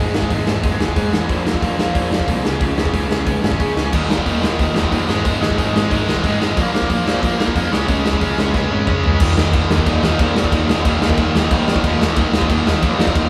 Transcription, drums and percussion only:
0.14 snare loud
0.22 kick medium
0.30 kick medium
0.30 open hi-hat medium
0.47 snare loud
0.63 kick loud
0.63 open hi-hat medium
0.81 snare loud
0.88 kick medium
0.96 kick loud
0.96 open hi-hat medium
1.13 snare loud
1.29 kick loud
1.29 open hi-hat medium
1.47 snare loud
1.54 kick medium
1.62 kick medium
1.62 open hi-hat medium
1.79 snare loud
1.95 kick loud
1.95 open hi-hat medium
2.13 snare loud
2.20 kick medium
2.28 kick loud
2.28 open hi-hat medium
2.45 snare loud
2.61 kick loud
2.61 open hi-hat medium
2.78 snare loud
2.85 kick medium
2.94 kick medium
2.94 open hi-hat medium
3.11 snare loud
3.27 kick loud
3.27 open hi-hat medium
3.44 snare loud
3.52 kick medium
3.60 kick loud
3.60 open hi-hat medium
3.77 snare loud
3.93 kick loud
3.93 crash loud
4.10 snare loud
4.18 kick medium
4.26 kick medium
4.26 open hi-hat medium
4.43 snare loud
4.59 kick loud
4.59 open hi-hat medium
4.76 snare loud
4.84 kick medium
4.92 kick medium
4.92 open hi-hat medium
5.09 snare loud
5.25 kick loud
5.25 open hi-hat medium
5.43 snare loud
5.50 kick medium
5.58 kick loud
5.58 open hi-hat medium
5.76 snare loud
5.91 kick loud
5.91 open hi-hat medium
6.09 snare loud
6.16 kick medium
6.24 kick medium
6.24 open hi-hat medium
6.42 snare loud
6.57 kick loud
6.57 open hi-hat medium
6.75 snare loud
6.82 kick medium
6.90 kick loud
6.90 open hi-hat medium
7.08 snare loud
7.23 kick loud
7.23 open hi-hat medium
7.40 snare loud
7.47 kick medium
7.56 kick loud
7.56 open hi-hat medium
7.73 snare loud
7.88 kick loud
7.88 open hi-hat medium
8.06 snare loud
8.13 kick medium
8.21 kick medium
8.21 open hi-hat medium
8.38 snare loud
8.54 kick loud
8.54 snare medium
8.87 kick loud
8.87 mid tom medium
9.03 floor tom medium
9.20 kick loud
9.20 crash loud
9.20 crash medium
9.38 snare loud
9.53 kick loud
9.53 crash medium
9.71 snare loud
9.78 kick medium
9.86 kick loud
9.86 crash medium
10.03 snare loud
10.19 kick loud
10.19 crash medium
10.36 snare loud
10.44 kick loud
10.52 kick loud
10.52 crash medium
10.69 snare loud
10.85 kick loud
10.85 crash medium
11.02 snare loud
11.10 kick medium
11.17 kick loud
11.17 crash medium
11.35 snare loud
11.51 kick loud
11.51 crash medium
11.68 snare loud
11.76 kick medium
11.84 kick loud
11.84 crash medium
12.01 snare loud
12.16 kick loud
12.16 crash medium
12.34 snare loud
12.41 kick loud
12.50 kick loud
12.50 crash medium
12.67 snare loud
12.83 kick loud
12.83 crash medium
13.00 snare loud
13.07 kick medium
13.15 kick loud
13.15 crash medium

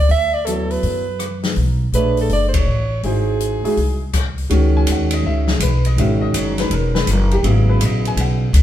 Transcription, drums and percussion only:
0.09 open hi-hat soft
0.47 closed hi-hat medium
0.71 open hi-hat soft
0.83 open hi-hat soft
1.19 cross-stick medium
1.19 closed hi-hat medium
1.43 snare medium
1.43 open hi-hat soft
1.56 open hi-hat soft
1.93 closed hi-hat medium
2.17 open hi-hat soft
2.29 open hi-hat soft
2.54 kick medium
2.54 ride medium
3.03 open hi-hat soft
3.40 closed hi-hat soft
3.65 open hi-hat soft
3.77 open hi-hat soft
4.13 kick medium
4.13 cross-stick medium
4.13 closed hi-hat medium
4.13 crash medium
4.38 open hi-hat soft
4.50 ride medium
4.87 hi-hat pedal medium
4.87 ride medium
5.11 ride medium
5.47 snare medium
5.60 hi-hat pedal medium
5.60 ride medium
5.85 ride soft
5.98 ride medium
6.34 hi-hat pedal medium
6.34 ride medium
6.58 snare soft
6.58 ride soft
6.71 ride medium
6.95 snare medium
7.07 hi-hat pedal medium
7.07 ride medium
7.31 ride soft
7.44 ride medium
7.81 hi-hat pedal medium
7.81 ride medium
8.05 ride soft
8.17 ride medium
8.54 hi-hat pedal medium
8.54 ride medium

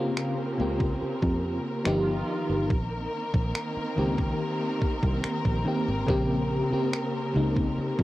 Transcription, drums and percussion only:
0.17 finger snap loud
0.80 kick medium
1.22 kick medium
1.86 finger snap loud
2.70 kick loud
3.34 kick medium
3.55 finger snap loud
4.18 kick medium
4.82 kick medium
5.03 kick medium
5.24 finger snap loud
5.45 kick medium
6.08 kick loud
6.93 finger snap loud
7.56 kick medium
7.99 kick medium

